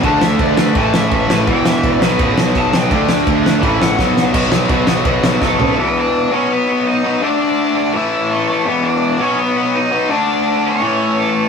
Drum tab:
CC |x-x-x-x-|x-x-x-x-|x-x-x---|x-x-x---|
SD |-o-o-o-o|-o-o-o-o|-o-o-ooo|-o-o-oo-|
FT |--------|--------|--------|-------o|
BD |o-o-o-o-|o-o-o-o-|o-o-o-o-|o-o-o-o-|

CC |--------|--------|--------|--------|
SD |--------|--------|--------|--------|
FT |--------|--------|--------|--------|
BD |--------|--------|--------|--------|